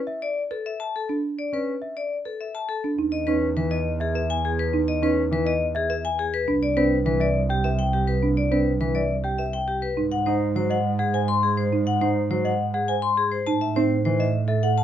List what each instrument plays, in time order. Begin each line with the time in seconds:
0.07 celesta E5
0.22 vibraphone D5
0.51 vibraphone A4, marimba B4
0.66 vibraphone E5
0.80 vibraphone A5
0.96 vibraphone A4
1.09 marimba D4
1.39 vibraphone D5
1.53 grand piano C#4, vibraphone B4
1.82 celesta E5
1.97 vibraphone D5
2.25 vibraphone A4, marimba B4
2.41 vibraphone E5
2.55 vibraphone A5
2.69 vibraphone A4
2.84 marimba D4
2.98 double bass E2, marimba D#4
3.12 vibraphone D#5
3.27 grand piano C#4, marimba D#4, vibraphone B4
3.57 grand piano E3, vibraphone B4
3.71 vibraphone D#5, celesta D#5
4.00 vibraphone G#4, celesta E5
4.15 marimba B4, vibraphone E5
4.30 vibraphone G#5
4.45 vibraphone G#4
4.59 vibraphone B4
4.73 marimba D#4
4.88 vibraphone D#5
5.02 grand piano C#4, marimba D#4, vibraphone B4
5.31 grand piano E3, vibraphone B4
5.46 celesta D#5, vibraphone D#5
5.75 vibraphone G#4, celesta E5
5.90 marimba B4, vibraphone E5
6.05 vibraphone G#5
6.19 vibraphone G#4
6.34 vibraphone B4
6.48 double bass C2, marimba D4
6.63 vibraphone D5
6.77 grand piano C4, marimba D4, vibraphone B4
7.05 grand piano E3, vibraphone B4
7.20 vibraphone D5, celesta E5
7.50 vibraphone G4, celesta G5
7.64 marimba B4, vibraphone E5
7.79 vibraphone G5
7.93 vibraphone G4
8.08 vibraphone B4
8.23 marimba D4
8.37 vibraphone D5
8.51 grand piano C4, marimba D4, vibraphone B4
8.80 grand piano E3, vibraphone B4
8.95 vibraphone D5, celesta E5
9.24 vibraphone G4, celesta G5
9.38 marimba B4, vibraphone E5
9.53 vibraphone G5
9.68 vibraphone G4
9.82 vibraphone B4
9.97 double bass G#2, marimba D#4
10.12 vibraphone F#5
10.26 grand piano D#4, marimba D#4, vibraphone C5
10.56 grand piano F#3, vibraphone C5
10.70 celesta D#5, vibraphone F#5
10.99 vibraphone G#4, celesta F#5
11.14 marimba C5, vibraphone G#5
11.28 vibraphone C6
11.43 vibraphone G#4
11.57 vibraphone C5
11.72 marimba D#4
11.87 vibraphone F#5
12.01 grand piano D#4, marimba D#4, vibraphone C5
12.30 grand piano F#3, vibraphone C5
12.45 celesta D#5, vibraphone F#5
12.74 vibraphone G#4, celesta F#5
12.88 marimba C5, vibraphone G#5
13.02 vibraphone C6
13.17 vibraphone G#4
13.32 vibraphone C5
13.47 double bass A2, marimba D#4, vibraphone A5
13.61 vibraphone E5
13.76 grand piano C4, marimba D#4, vibraphone C5
14.05 grand piano E3, vibraphone C5
14.19 celesta D#5, vibraphone E5
14.48 vibraphone A4, celesta E5
14.63 marimba A4, vibraphone F#5
14.78 vibraphone A5